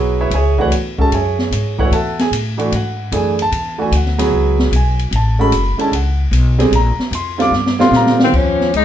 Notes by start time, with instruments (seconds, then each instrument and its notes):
Already playing: upright bass B1, grand piano F#3 B3 E4 F#4 G#4 B4 C#5 F#5
0.21 grand piano E4 B4 C#5 E5
0.30 upright bass C#2, grand piano G#5, ride
0.35 grand piano G#4 C#5 E5
0.58 grand piano E3 A3 D4 F#4 B4 C#5 F#5, kick
0.70 upright bass E2, hi-hat pedal, ride
0.98 grand piano G#3 C#4 F#4 A4 A5, kick
1.12 upright bass F#2, grand piano G#4 C#5 E5 G#5, ride
1.39 snare
1.51 upright bass G#2, hi-hat pedal, ride
1.78 grand piano E3 A3 D4 E4 F#4 B4 C#5 F#5, kick
1.91 upright bass E2, grand piano A4 E5 F#5 A5, ride
2.19 grand piano G#4 G#5, snare, ride
2.31 upright bass A2, hi-hat pedal, ride
2.58 grand piano E3 A3 D4 F#4, ride
2.72 upright bass G#2, grand piano F#5, ride
3.12 upright bass F#2, grand piano E3 A3 D4 G#4, hi-hat pedal, ride
3.16 grand piano G#5
3.39 grand piano A5, ride
3.51 upright bass E2, ride
3.78 grand piano E3 A3 D4 F#4 G#5
3.91 upright bass D2, hi-hat pedal, ride
3.97 grand piano F#5
4.06 snare
4.18 grand piano F#3 B3 E4 G#4, snare, ride
4.31 upright bass C#2
4.59 snare
4.71 upright bass B1, hi-hat pedal, ride
4.76 grand piano G#5
4.99 ride
5.11 upright bass A1, ride
5.16 grand piano A5
5.39 grand piano G#3 C#4 F#4 A4 B5
5.52 upright bass F#1, hi-hat pedal, ride
5.78 grand piano D3 G#3 C#4 E4 A5, muted upright bass stroke, ride
5.92 upright bass C#2, grand piano F#5, ride
6.31 upright bass B1, hi-hat pedal, ride
6.58 grand piano D3 G3 C4 G#4, snare, ride
6.71 upright bass A#1, ride
6.75 grand piano A#5
6.97 muted upright bass stroke, snare
7.11 upright bass F2, grand piano C6, hi-hat pedal, ride
7.38 grand piano D3 G3 C4 F4 D6, snare, ride
7.51 upright bass G2, snare
7.66 snare
7.79 grand piano D3 G3 C4 F4 C6, snare
7.91 upright bass A#2, snare, hi-hat pedal
7.96 grand piano A#5
8.06 snare
8.19 trombone D#3, snare
8.24 tenor saxophone C4
8.33 upright bass D#2, trombone F3, tenor saxophone C#4, kick, crash
8.61 snare
8.73 upright bass C#2, trombone G#3, tenor saxophone D#4, hi-hat pedal, ride